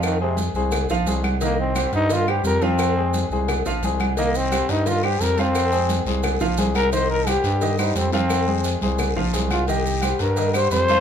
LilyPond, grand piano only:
\new Staff \with { instrumentName = "Grand piano" } { \time 4/4 \key c \minor \tempo 4 = 174 <f f' f''>8 <aes aes' c''>4 <aes aes' c''>4 <f f' f''>8 <aes aes' c''>4 | <ees ees' ees''>4 <g g' c''>4 <ees ees' ees''>8 <g g' c''>4 <f f' f''>8~ | <f f' f''>8 <aes aes' c''>4 <aes aes' c''>4 <f f' f''>8 <aes aes' c''>4 | <ees ees' ees''>4 <g g' c''>4 <ees ees' ees''>8 <g g' c''>4 <f f' f''>8~ |
<f f' f''>8 <aes aes' c''>4 <aes aes' c''>4 <f f' f''>8 <aes aes' c''>4 | <ees ees' ees''>4 <g g' c''>4 <ees ees' ees''>8 <g g' c''>4 <f f' f''>8~ | <f f' f''>8 <aes aes' c''>4 <aes aes' c''>4 <f f' f''>8 <aes aes' c''>4 | <ees ees' ees''>4 <g g' c''>4 <ees ees' ees''>8 <g g' c''>4 <f f' f''>8 | }